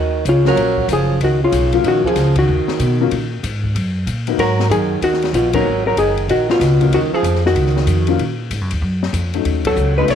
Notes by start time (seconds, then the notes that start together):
Already playing: D#2 D#3 F#4
0.25 C#2 C#3, hi-hat pedal, ride
0.29 F4
0.45 F#3 A#3 C#4 F4 A#4, snare
0.56 A#1, ride
0.77 kick
0.88 F#1 F3, hi-hat pedal, ride
0.93 G#4
1.20 C#2 D#3, ride
1.24 F#4
1.43 C#3 F4
1.52 B1, hi-hat pedal, ride
1.73 F#3 A#3 C#4 F4, ride
1.84 A#1 D#3, ride
1.88 F#4
2.04 F3 G#4, kick
2.16 C#2, snare, hi-hat pedal, ride
2.36 D#3 F#4, kick, ride
2.48 D#2
2.68 muted upright bass stroke, snare
2.79 B2, hi-hat pedal, ride
3.01 F#3 A#3 C#4 F4
3.11 A#2, ride
3.43 G#2, hi-hat pedal, ride
3.64 kick
3.75 F#2, ride
4.06 A#2, hi-hat pedal, ride
4.27 F#3 A#3 B3 D#4, ride
4.38 G#2 F#3 A#4, ride
4.60 snare
4.69 F#2 D#3 G#4, hi-hat pedal, ride
5.01 D#2 D#3 F#4, ride
5.13 snare
5.22 snare, ride
5.33 A#1 B2 F4, hi-hat pedal, ride
5.53 F#3 A#3 B3 D#4 A#4, kick, ride
5.65 G#1
5.87 F#3 A#4
5.97 F#1 D#3 G#4, hi-hat pedal, ride
6.17 ride
6.28 A#1 D#3 F#4, ride
6.50 B2 F4, snare
6.60 C#2, snare, hi-hat pedal, ride
6.81 F#3 A#3 C#4 F4, kick, ride
6.92 D#2 D#3 F#4, ride
7.12 F3 G#4, muted upright bass stroke
7.23 F2, hi-hat pedal, ride
7.35 snare
7.46 D#3 F#4, snare
7.55 C#2, ride
7.66 snare
7.77 snare
7.86 F2, hi-hat pedal, ride
8.07 F#3 A#3 C#4 F4, ride
8.19 A#2, ride
8.50 G#2, hi-hat pedal, ride
8.61 F#2
8.71 D#2, ride
8.82 F#2
9.03 snare
9.13 F2, hi-hat pedal, ride
9.34 F#3 A3 C#4 D#4, ride
9.45 D#2, ride
9.65 F#3 A4, kick, ride
9.76 C#2, hi-hat pedal
9.96 F#3 G#3 A3 C#4 D#4 B4
10.07 B1 A3 C#5, ride